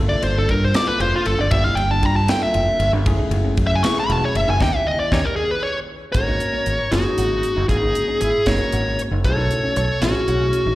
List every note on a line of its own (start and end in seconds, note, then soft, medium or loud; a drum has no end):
0.00 3.04 G3 medium
0.00 0.58 A#3 medium
0.00 0.59 D4 medium
0.00 3.03 D4 medium
0.00 0.59 F4 medium
0.00 3.03 F4 medium
0.00 0.59 A4 medium
0.09 0.24 E4 medium
0.09 0.22 D5 medium
0.23 0.46 G1 medium
0.23 0.36 C5 medium
0.23 ride medium
0.37 0.50 D4 medium
0.37 0.52 A4 medium
0.49 0.73 G2 medium
0.49 0.63 A#4 medium
0.49 kick medium
0.49 ride medium
0.65 0.75 C5 medium
0.74 1.36 A#3 medium
0.74 1.36 D4 medium
0.74 0.89 E4 medium
0.74 1.36 F4 medium
0.74 1.37 A4 medium
0.74 0.87 D5 loud
0.74 snare loud
0.74 ride medium
0.88 1.00 B4 medium
1.00 1.12 F1 medium
1.00 1.15 F4 medium
1.00 1.14 C5 medium
1.00 ride medium
1.16 1.27 F4 medium
1.26 1.37 G1 medium
1.26 1.39 A4 medium
1.26 ride medium
1.38 1.50 G1 loud
1.38 1.46 D4 medium
1.38 1.51 D5 medium
1.51 1.63 G1 loud
1.51 2.13 A#3 medium
1.51 2.13 D4 medium
1.51 2.13 F4 medium
1.51 2.14 G4 medium
1.51 1.64 E5 medium
1.51 kick loud
1.51 ride medium
1.64 1.78 E4 medium
1.64 1.77 F5 medium
1.75 2.00 G1 medium
1.75 1.89 G5 loud
1.75 ride medium
1.91 2.04 D4 medium
1.91 2.05 A5 medium
2.03 2.27 G2 medium
2.03 2.16 A#5 loud
2.03 kick medium
2.03 ride medium
2.16 2.29 A5 medium
2.28 2.90 A#3 medium
2.28 2.90 D4 medium
2.28 2.43 E4 medium
2.28 2.91 F4 medium
2.28 2.91 A4 medium
2.28 2.42 G5 loud
2.28 snare loud
2.28 ride medium
2.43 2.91 E5 medium
2.54 2.67 F1 medium
2.54 2.68 F4 medium
2.54 ride medium
2.79 2.92 G1 medium
2.79 ride medium
2.93 3.06 G1 loud
2.93 3.00 D4 medium
3.06 3.18 F#1 medium
3.06 4.60 F#3 medium
3.06 3.67 A3 medium
3.06 3.67 C#4 medium
3.06 6.13 C#4 medium
3.06 3.68 E4 medium
3.06 4.59 E4 medium
3.06 3.68 G#4 medium
3.06 4.60 G#4 medium
3.06 kick loud
3.06 ride medium
3.19 3.32 D#4 medium
3.31 3.55 F#1 medium
3.31 ride medium
3.45 3.58 C#4 medium
3.57 3.81 F#2 medium
3.57 kick medium
3.57 ride medium
3.67 3.75 E5 medium
3.75 3.84 G#5 medium
3.83 4.44 A3 medium
3.83 4.45 C#4 medium
3.83 3.97 E4 loud
3.83 4.45 E4 medium
3.83 4.45 G#4 medium
3.83 3.96 C#6 loud
3.83 snare loud
3.83 ride loud
4.00 4.11 B5 medium
4.09 4.21 E1 loud
4.09 4.23 F#4 medium
4.09 4.23 A5 medium
4.09 ride medium
4.25 4.36 C#5 medium
4.35 4.47 F#1 medium
4.35 4.49 E5 loud
4.35 ride medium
4.47 4.60 F#1 loud
4.47 4.54 D#4 medium
4.47 4.62 G#5 loud
4.60 4.70 D#2 loud
4.60 6.14 D#3 medium
4.60 6.13 A#3 medium
4.60 4.69 C#4 loud
4.60 4.69 C#4 medium
4.60 4.69 D#4 loud
4.60 4.69 D#4 medium
4.60 6.14 E4 medium
4.60 6.14 G4 medium
4.60 4.69 G4 loud
4.60 4.69 G4 medium
4.60 4.76 G5 medium
4.60 kick loud
4.60 snare medium
4.76 4.87 E5 medium
4.87 4.99 D#5 loud
5.00 5.12 D5 medium
5.12 5.22 D#2 medium
5.12 5.20 C#4 loud
5.12 5.21 C#4 medium
5.12 5.21 D#4 loud
5.12 5.21 D#4 medium
5.12 5.21 G4 loud
5.12 5.21 G4 medium
5.12 5.25 C#5 medium
5.12 kick medium
5.12 snare medium
5.25 5.36 A#4 medium
5.36 5.50 G#4 medium
5.51 5.63 B4 medium
5.63 5.79 C#5 medium
6.12 6.38 G#1 medium
6.12 6.76 A#3 medium
6.12 6.77 C#4 medium
6.12 6.77 D#4 medium
6.12 6.88 A#4 medium
6.12 6.94 C#5 medium
6.12 kick loud
6.12 closed hi-hat medium
6.17 6.77 F#4 medium
6.28 6.41 D#4 medium
6.40 closed hi-hat medium
6.53 6.67 C#4 medium
6.66 6.78 G#1 medium
6.66 closed hi-hat medium
6.92 7.04 F#1 medium
6.92 7.53 A#3 medium
6.92 7.53 C#4 medium
6.92 7.66 D#4 medium
6.92 7.05 D#4 medium
6.92 7.54 D#4 medium
6.92 7.65 F#4 medium
6.92 7.54 G#4 medium
6.92 snare loud
6.92 closed hi-hat medium
7.18 7.42 G#1 medium
7.18 7.31 F#4 medium
7.18 closed hi-hat medium
7.43 closed hi-hat medium
7.56 7.68 F#1 medium
7.56 7.63 D#4 medium
7.69 7.93 G#1 medium
7.69 8.31 A#3 medium
7.69 8.31 C#4 soft
7.69 8.31 D#4 medium
7.69 8.19 D#4 medium
7.69 8.31 F#4 medium
7.69 8.20 G#4 medium
7.69 kick medium
7.69 closed hi-hat medium
7.82 7.95 D#4 medium
7.95 closed hi-hat medium
8.08 8.21 C#4 medium
8.21 8.33 G#1 medium
8.21 8.45 E4 medium
8.21 8.45 G#4 medium
8.21 closed hi-hat medium
8.46 8.58 F#1 medium
8.46 9.08 A#3 medium
8.46 9.08 C#4 medium
8.46 8.61 D#4 medium
8.46 9.09 D#4 medium
8.46 9.09 F#4 medium
8.46 9.01 A#4 medium
8.46 9.01 C#5 medium
8.46 kick medium
8.46 snare loud
8.46 closed hi-hat medium
8.72 8.96 G#1 medium
8.72 8.86 F#4 medium
8.72 closed hi-hat medium
8.99 closed hi-hat medium
9.11 9.23 F#1 medium
9.11 9.19 D#4 medium
9.24 9.48 B1 loud
9.24 9.85 A3 medium
9.24 9.86 C#4 medium
9.24 9.86 E4 medium
9.24 9.86 F#4 medium
9.24 9.73 A4 medium
9.24 9.76 C#5 medium
9.24 kick loud
9.24 closed hi-hat medium
9.38 9.51 D#4 medium
9.51 closed hi-hat medium
9.64 9.77 C#4 medium
9.76 9.88 B1 medium
9.76 10.00 A4 medium
9.76 10.03 C#5 medium
9.76 closed hi-hat medium
10.01 10.13 A1 medium
10.01 10.62 A3 medium
10.01 10.63 C#4 medium
10.01 10.75 C#4 medium
10.01 10.63 E4 medium
10.01 10.15 E4 medium
10.01 10.75 F#4 medium
10.01 10.63 G#4 medium
10.01 snare loud
10.01 closed hi-hat medium
10.28 10.51 B1 medium
10.28 10.41 F#4 medium
10.28 closed hi-hat medium
10.53 closed hi-hat medium
10.66 10.75 A1 medium
10.66 10.73 D#4 medium